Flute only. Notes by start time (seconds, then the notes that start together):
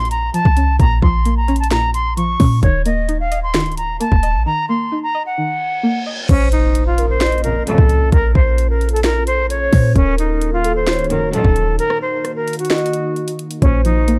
0.11 A#5
0.34 A5
0.80 A#5
1.02 C6
1.37 A#5
1.60 A5
1.71 A#5
1.94 C6
2.17 C#6
2.63 C#5
2.86 D#5
3.20 F5
3.43 C6
3.77 A#5
4.00 A5
4.46 A#5
4.69 C6
5.03 A#5
5.26 F#5
6.29 C#4
6.52 D#4
6.87 F4
7.09 C5
7.44 A#4
7.67 A4
8.12 A#4
8.35 C5
8.70 A#4
8.93 A4
9.04 A#4
9.27 C5
9.50 C#5
9.96 C#4
10.19 D#4
10.53 F4
10.76 C5
11.10 A#4
11.33 A4
11.79 A#4
12.02 C5
12.36 A#4
12.59 F#4
13.62 C#4
13.85 D#4